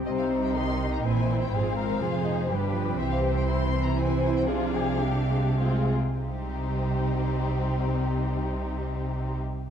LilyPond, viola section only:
\new Staff \with { instrumentName = "Viola section" } { \clef bass \time 3/4 \key c \minor \tempo 4 = 115 << { c'4 ees'4 c'4 | c'4 f'8 ees'8 d'4 | c'2 e'4 | d'2 c'8 r8 |
c'2.~ | c'2. | } \\ { g4 ees4 e4 | f2 g8 f8 | e4 e2 | f4 g8 aes8 aes8 r8 |
g2.~ | g2. | } >> }